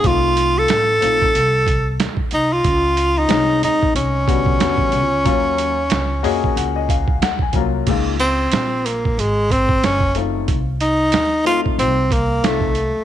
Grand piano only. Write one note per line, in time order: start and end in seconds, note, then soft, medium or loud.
0.03 0.96 A3 medium
0.03 0.97 C4 medium
0.03 0.97 D#4 medium
0.03 0.97 F4 medium
1.00 1.26 A3 medium
1.00 1.26 C4 medium
1.00 1.27 D#4 medium
1.00 1.27 F4 medium
3.28 4.22 G#3 medium
3.28 4.22 C4 medium
3.28 4.23 C#4 medium
3.28 4.23 D#4 medium
4.27 4.60 D3 medium
4.27 4.59 G3 medium
4.27 4.59 B3 medium
4.27 4.60 F#4 medium
4.60 5.01 D3 medium
4.60 5.01 G3 medium
4.60 5.01 B3 medium
4.60 5.02 F#4 medium
5.25 5.73 F#3 medium
5.25 5.74 A#3 medium
5.25 5.74 C#4 medium
5.25 5.74 F4 medium
6.23 7.16 A#3 medium
6.23 7.16 C#4 medium
6.23 7.16 F#4 medium
6.23 7.17 G#4 loud
6.23 6.54 D#5 medium
6.57 6.75 F#5 medium
6.76 6.88 D#5 medium
6.90 7.20 F5 medium
7.22 7.40 F#5 medium
7.42 7.54 G#5 medium
7.54 7.87 F#3 medium
7.54 7.87 A#3 medium
7.54 7.88 C#4 medium
7.54 7.88 F4 medium
7.54 7.85 A#5 medium
7.88 8.12 G#3 medium
7.88 8.13 A#3 medium
7.88 8.13 D#4 medium
7.88 8.13 F4 medium
10.15 10.55 A3 medium
10.15 10.56 C4 medium
10.15 10.56 D#4 medium
10.15 10.56 F4 medium
11.45 11.93 A3 medium
11.45 11.93 C4 medium
11.45 11.94 D#4 medium
11.45 11.94 F4 medium
12.43 12.68 A3 medium
12.43 12.68 C4 medium
12.43 12.69 D#4 medium
12.43 12.69 F4 medium